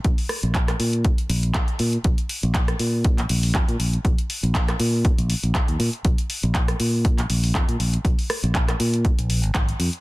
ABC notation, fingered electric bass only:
X:1
M:4/4
L:1/16
Q:"Swing 16ths" 1/4=120
K:Ab
V:1 name="Fingered electric bass" clef=bass
B,,, z2 B,,,2 z B,,2 z2 B,,,2 z2 B,, z | B,,, z2 B,,,2 z B,,3 B,,, B,,,2 F,, B,, B,,, z | B,,, z2 B,,,2 z B,,2 z B,,, z B,,, z E,, B,, z | B,,, z2 B,,,2 z B,,3 B,,, B,,,2 F,, B,, B,,, z |
B,,, z2 B,,,2 z B,,2 z B,,,2 A,,, z2 F,, z |]